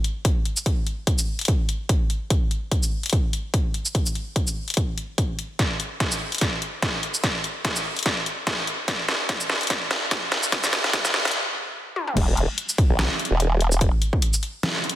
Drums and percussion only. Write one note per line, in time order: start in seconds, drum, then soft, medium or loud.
0.04 closed hi-hat medium
0.25 kick loud
0.25 closed hi-hat medium
0.45 closed hi-hat medium
0.57 shaker medium
0.66 kick loud
0.66 closed hi-hat medium
0.87 closed hi-hat medium
1.07 kick loud
1.07 closed hi-hat medium
1.18 shaker medium
1.39 closed hi-hat medium
1.41 closed hi-hat medium
1.45 kick loud
1.45 closed hi-hat medium
1.48 closed hi-hat medium
1.69 closed hi-hat medium
1.89 kick loud
1.89 closed hi-hat medium
2.10 closed hi-hat medium
2.30 kick loud
2.30 closed hi-hat medium
2.51 closed hi-hat medium
2.72 kick loud
2.72 closed hi-hat medium
2.83 shaker medium
3.03 closed hi-hat medium
3.06 closed hi-hat medium
3.10 kick medium
3.10 closed hi-hat medium
3.13 closed hi-hat medium
3.33 closed hi-hat medium
3.54 kick loud
3.54 closed hi-hat medium
3.74 closed hi-hat medium
3.86 shaker medium
3.95 kick loud
3.95 closed hi-hat medium
4.06 shaker medium
4.15 closed hi-hat medium
4.36 kick loud
4.36 closed hi-hat medium
4.47 shaker medium
4.68 closed hi-hat soft
4.70 closed hi-hat medium
4.74 kick medium
4.74 closed hi-hat medium
4.77 closed hi-hat medium
4.98 closed hi-hat medium
5.18 kick loud
5.18 closed hi-hat medium
5.39 closed hi-hat medium
5.59 kick loud
5.59 snare soft
5.59 closed hi-hat medium
5.80 closed hi-hat medium
6.00 kick loud
6.00 snare medium
6.00 closed hi-hat medium
6.12 shaker medium
6.32 closed hi-hat soft
6.35 closed hi-hat medium
6.38 snare medium
6.38 closed hi-hat medium
6.41 kick loud
6.41 closed hi-hat medium
6.62 closed hi-hat soft
6.82 kick loud
6.82 snare medium
6.82 closed hi-hat medium
7.03 closed hi-hat medium
7.14 shaker medium
7.24 kick loud
7.24 snare medium
7.24 closed hi-hat medium
7.44 closed hi-hat soft
7.65 kick loud
7.65 snare medium
7.65 closed hi-hat medium
7.76 shaker medium
7.96 closed hi-hat soft
7.99 closed hi-hat medium
8.03 kick loud
8.03 snare medium
8.03 closed hi-hat medium
8.26 closed hi-hat medium
8.47 kick loud
8.47 snare medium
8.47 closed hi-hat medium
8.67 closed hi-hat medium
8.88 kick loud
8.88 snare medium
8.88 closed hi-hat medium
9.09 snare medium
9.09 closed hi-hat medium
9.29 kick loud
9.29 snare medium
9.29 closed hi-hat medium
9.40 shaker medium
9.50 snare medium
9.61 closed hi-hat soft
9.63 closed hi-hat medium
9.67 kick loud
9.67 snare medium
9.67 closed hi-hat medium
9.70 closed hi-hat medium
9.91 snare medium
9.91 closed hi-hat medium
10.11 kick loud
10.11 snare medium
10.11 closed hi-hat medium
10.32 snare medium
10.32 closed hi-hat medium
10.43 shaker medium
10.52 kick loud
10.52 snare medium
10.52 closed hi-hat medium
10.64 snare medium
10.64 shaker medium
10.73 snare loud
10.73 closed hi-hat medium
10.84 snare medium
10.84 closed hi-hat soft
10.93 kick loud
10.93 snare loud
10.93 closed hi-hat medium
11.05 snare medium
11.05 shaker medium
11.14 snare loud
11.25 snare medium
11.25 closed hi-hat soft
11.28 closed hi-hat medium
11.31 closed hi-hat medium
11.96 high tom medium
12.07 mid tom medium
12.17 kick loud
12.17 closed hi-hat medium
12.17 crash loud
12.37 closed hi-hat medium
12.58 closed hi-hat medium
12.69 shaker medium
12.78 kick loud
12.78 closed hi-hat medium
12.99 snare loud
12.99 closed hi-hat medium
13.19 closed hi-hat medium
13.25 closed hi-hat medium
13.40 closed hi-hat medium
13.61 closed hi-hat medium
13.72 shaker medium
13.81 kick loud
13.81 closed hi-hat medium
14.02 closed hi-hat medium
14.13 kick medium
14.22 closed hi-hat medium
14.34 shaker medium
14.43 closed hi-hat medium
14.63 snare loud
14.63 closed hi-hat medium
14.84 closed hi-hat medium
14.89 closed hi-hat medium